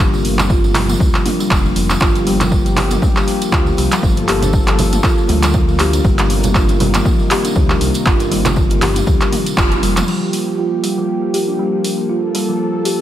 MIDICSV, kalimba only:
0, 0, Header, 1, 2, 480
1, 0, Start_track
1, 0, Time_signature, 4, 2, 24, 8
1, 0, Key_signature, -2, "minor"
1, 0, Tempo, 504202
1, 12387, End_track
2, 0, Start_track
2, 0, Title_t, "Kalimba"
2, 0, Program_c, 0, 108
2, 477, Note_on_c, 0, 65, 76
2, 549, Note_off_c, 0, 65, 0
2, 717, Note_on_c, 0, 55, 100
2, 837, Note_off_c, 0, 55, 0
2, 851, Note_on_c, 0, 53, 96
2, 946, Note_off_c, 0, 53, 0
2, 1198, Note_on_c, 0, 62, 92
2, 1324, Note_off_c, 0, 62, 0
2, 1332, Note_on_c, 0, 55, 97
2, 1432, Note_off_c, 0, 55, 0
2, 1438, Note_on_c, 0, 50, 73
2, 1564, Note_off_c, 0, 50, 0
2, 1573, Note_on_c, 0, 53, 75
2, 1672, Note_off_c, 0, 53, 0
2, 1919, Note_on_c, 0, 65, 77
2, 1990, Note_off_c, 0, 65, 0
2, 2159, Note_on_c, 0, 55, 101
2, 2278, Note_off_c, 0, 55, 0
2, 2292, Note_on_c, 0, 53, 96
2, 2387, Note_off_c, 0, 53, 0
2, 2639, Note_on_c, 0, 67, 101
2, 2765, Note_off_c, 0, 67, 0
2, 2772, Note_on_c, 0, 62, 74
2, 2866, Note_off_c, 0, 62, 0
2, 2878, Note_on_c, 0, 55, 100
2, 2949, Note_off_c, 0, 55, 0
2, 3358, Note_on_c, 0, 65, 76
2, 3429, Note_off_c, 0, 65, 0
2, 3599, Note_on_c, 0, 55, 99
2, 3718, Note_off_c, 0, 55, 0
2, 3730, Note_on_c, 0, 53, 109
2, 3826, Note_off_c, 0, 53, 0
2, 4077, Note_on_c, 0, 67, 101
2, 4204, Note_off_c, 0, 67, 0
2, 4212, Note_on_c, 0, 62, 69
2, 4306, Note_off_c, 0, 62, 0
2, 4318, Note_on_c, 0, 55, 95
2, 4389, Note_off_c, 0, 55, 0
2, 4798, Note_on_c, 0, 65, 84
2, 4869, Note_off_c, 0, 65, 0
2, 5037, Note_on_c, 0, 55, 98
2, 5157, Note_off_c, 0, 55, 0
2, 5171, Note_on_c, 0, 53, 99
2, 5266, Note_off_c, 0, 53, 0
2, 5519, Note_on_c, 0, 67, 104
2, 5644, Note_off_c, 0, 67, 0
2, 5652, Note_on_c, 0, 62, 79
2, 5747, Note_off_c, 0, 62, 0
2, 5758, Note_on_c, 0, 55, 98
2, 5829, Note_off_c, 0, 55, 0
2, 6236, Note_on_c, 0, 65, 75
2, 6308, Note_off_c, 0, 65, 0
2, 6475, Note_on_c, 0, 55, 100
2, 6596, Note_off_c, 0, 55, 0
2, 6607, Note_on_c, 0, 53, 98
2, 6704, Note_off_c, 0, 53, 0
2, 6955, Note_on_c, 0, 67, 102
2, 7083, Note_off_c, 0, 67, 0
2, 7087, Note_on_c, 0, 62, 80
2, 7184, Note_off_c, 0, 62, 0
2, 7195, Note_on_c, 0, 55, 91
2, 7268, Note_off_c, 0, 55, 0
2, 7675, Note_on_c, 0, 65, 76
2, 7748, Note_off_c, 0, 65, 0
2, 7915, Note_on_c, 0, 55, 98
2, 8036, Note_off_c, 0, 55, 0
2, 8050, Note_on_c, 0, 53, 97
2, 8146, Note_off_c, 0, 53, 0
2, 8395, Note_on_c, 0, 67, 107
2, 8523, Note_off_c, 0, 67, 0
2, 8530, Note_on_c, 0, 62, 71
2, 8626, Note_off_c, 0, 62, 0
2, 8637, Note_on_c, 0, 55, 96
2, 8709, Note_off_c, 0, 55, 0
2, 9115, Note_on_c, 0, 65, 77
2, 9188, Note_off_c, 0, 65, 0
2, 9355, Note_on_c, 0, 55, 101
2, 9476, Note_off_c, 0, 55, 0
2, 9488, Note_on_c, 0, 53, 114
2, 9585, Note_off_c, 0, 53, 0
2, 9594, Note_on_c, 0, 55, 91
2, 9667, Note_off_c, 0, 55, 0
2, 10074, Note_on_c, 0, 65, 69
2, 10147, Note_off_c, 0, 65, 0
2, 10315, Note_on_c, 0, 55, 91
2, 10436, Note_off_c, 0, 55, 0
2, 10449, Note_on_c, 0, 53, 88
2, 10545, Note_off_c, 0, 53, 0
2, 10795, Note_on_c, 0, 67, 88
2, 10923, Note_off_c, 0, 67, 0
2, 10929, Note_on_c, 0, 62, 72
2, 11025, Note_off_c, 0, 62, 0
2, 11035, Note_on_c, 0, 55, 92
2, 11108, Note_off_c, 0, 55, 0
2, 11514, Note_on_c, 0, 65, 72
2, 11587, Note_off_c, 0, 65, 0
2, 11755, Note_on_c, 0, 55, 92
2, 11876, Note_off_c, 0, 55, 0
2, 11888, Note_on_c, 0, 53, 91
2, 11985, Note_off_c, 0, 53, 0
2, 12235, Note_on_c, 0, 67, 93
2, 12363, Note_off_c, 0, 67, 0
2, 12387, End_track
0, 0, End_of_file